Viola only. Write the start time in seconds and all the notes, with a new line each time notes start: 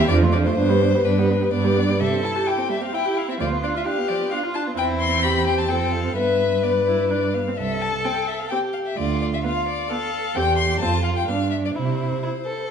0.11 F3
0.23 A3
0.34 F3
0.47 A3
0.59 B3
0.69 G3
0.82 B3
0.94 G3
1.06 B3
1.18 G3
1.29 B3
1.41 G3
1.52 B3
1.64 G3
1.77 B3
1.89 G3
2.00 G3
2.11 C4
2.23 E4
2.35 G4
2.46 E4
2.58 C4
2.69 G3
2.81 C4
2.93 E4
3.05 G4
3.16 E4
3.28 C4
3.40 F3
3.51 B3
3.63 D4
3.74 F4
3.86 D4
3.98 B3
4.10 F3
4.20 B3
4.32 D4
4.43 F4
4.55 D4
4.67 B3
4.78 C4
5.71 C4
6.17 B3
6.64 B3
6.87 E4
7.11 D4
7.35 B3
7.47 C4
8.05 C4
8.51 C4
9.44 B3
9.90 B3
10.36 C4
10.82 C4
11.28 B3
12.23 E4